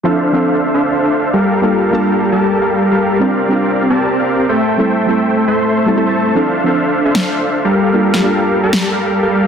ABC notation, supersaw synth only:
X:1
M:4/4
L:1/16
Q:1/4=152
K:Dm
V:1 name="Supersaw synth"
[DAcef]3 [DAcef]4 [DAcef]3 [DAcef]3 [G,GABf]3 | [G,GABf]3 [G,GABf]4 [G,GABa]3 [G,GABf]3 [G,GABf]3 | [CGBdf]3 [CGBdf]4 [CGBda]3 [CGBdf]3 [A,Aceg]3 | [A,Aceg]3 [A,Aceg]4 [A,Acec']3 [A,Acea]3 [A,Acea]3 |
[DAcef]3 [DAcef]4 [DAcef]3 [DAcef]3 [G,GABf]3 | [G,GABf]3 [G,GABf]4 [G,GABa]3 [G,GABf]3 [G,GABf]3 |]